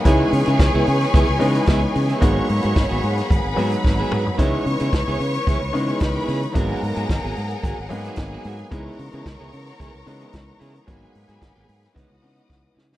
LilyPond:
<<
  \new Staff \with { instrumentName = "String section" } { \time 4/4 \key cis \dorian \tempo 4 = 111 <gis' gis''>1 | <cis'' cis'''>2 <b' b''>2 | <cis'' cis'''>2. <b' b''>4 | <ais' ais''>2~ <ais' ais''>8 <gis' gis''>4. |
<ais' ais''>1 | <gis' gis''>2 <fis' fis''>2 | }
  \new Staff \with { instrumentName = "String section" } { \time 4/4 \key cis \dorian <b' cis'' cis'''>1 | <gis' fis'' b''>1 | <b' cis'' cis'''>1 | <gis' fis'' gis''>1 |
<b cis'' cis'''>1 | <gis' fis'' b''>2 <b' dis'' dis'''>2 | }
  \new Staff \with { instrumentName = "Clean electric guitar" } { \time 4/4 \key cis \dorian <b e' gis'>8 r16 <b e' gis'>16 r16 <b e' gis'>16 r8 <b e' gis'>16 r8 <b e' gis'>16 <b e' gis'>16 r8 <b e' gis'>16 | <b fis' gis'>8 r16 <b fis' gis'>16 r16 <b fis' gis'>16 r4 <b fis' gis'>16 r8 <b fis' gis'>16 <b fis' gis'>16 r16 | <b e' gis'>8 r16 <b e' gis'>16 r16 <b e' gis'>16 r8 <b e' gis'>16 r8 <b e' gis'>16 r16 <b e' gis'>16 <b e' gis'>16 r16 | <b fis' gis'>8 r16 <b fis' gis'>16 r16 <b fis' gis'>16 r8 <b fis' gis'>16 r8 <b fis' gis'>16 r16 <b fis' gis'>16 <b fis' gis'>16 r16 |
<b e' gis'>8 r16 <b e' gis'>16 r16 <b e' gis'>16 r8 <b e' gis'>16 r8 <b e' gis'>16 r8 <b e' gis'>16 r16 | <b fis' gis'>8 r16 <b fis' gis'>16 r16 <b fis' gis'>16 r8 <e b dis'>16 r8 <e b dis'>16 r8 <e b dis'>16 r16 | }
  \new Staff \with { instrumentName = "Grand piano" } { \time 4/4 \key cis \dorian <e gis b cis' dis'>4. r4 <e gis b cis' dis'>4 r8 | <fis gis ais b dis'>4. r4 <fis gis b dis'>4 r8 | <dis e gis b cis' dis'>4. r4 <dis e gis b cis' dis'>4 r8 | <fis gis ais b dis'>4. r4 <fis gis ais b dis'>4 r8 |
<e gis b cis' dis'>4. r4 <e gis b cis' dis'>4 r8 | <fis gis ais b dis'>4. r8 <e gis b cis' dis'>8 <e gis b cis' dis'>4 r8 | }
  \new Staff \with { instrumentName = "Fingered electric bass" } { \clef bass \time 4/4 \key cis \dorian cis,8 cis16 cis16 cis,16 cis,16 cis8 cis,16 cis,16 cis8 cis,8 cis8 | gis,,8 gis,16 gis,16 gis,,16 gis,,16 gis,8 gis,,16 gis,,16 gis,8 gis,,8 gis,8 | cis,8 cis16 cis16 cis,16 cis,16 cis8 cis,16 cis,16 cis8 cis,8 cis8 | gis,,8 gis,16 gis,16 gis,,16 gis,,16 gis,8 gis,,16 gis,,16 gis,8 gis,,8 gis,8 |
cis,8 cis16 cis16 cis,16 cis,16 cis8 cis,16 cis,16 cis8 cis,8 cis8 | gis,,8 gis,16 gis,16 gis,,16 gis,,16 gis,8 cis,16 cis,16 cis8 cis,8 cis8 | }
  \new DrumStaff \with { instrumentName = "Drums" } \drummode { \time 4/4 <hh bd>8 hho16 hh16 <hh bd sn>8 hho16 <hh sn>16 <hh bd>8 hho16 hh16 <hh bd sn>8 hho16 hh16 | <hh bd>8 hho16 hh16 <hh bd sn>8 hho16 <hh sn>16 <hh bd>8 hho16 hh16 <bd sn>8 toml16 tomfh16 | <hh bd>8 hho16 hh16 <hh bd sn>8 hho16 hh16 <hh bd>8 hho16 hh16 <hh bd sn>8 hho16 hh16 | <hh bd>8 hho16 hh16 <hh bd sn>8 hho16 hh16 <hh bd>8 hho16 hh16 <hh bd sn>8 hho16 hh16 |
<hh bd>8 hho16 hh16 <hh bd sn>8 hho16 <hh sn>16 <hh bd>8 hho16 hh16 <hh bd sn>8 hho16 hh16 | <hh bd>8 hho16 hh16 <hh bd sn>8 hho16 <hh sn>16 <hh bd>8 hho16 hh16 <bd sn>8 sn16 sn16 | }
>>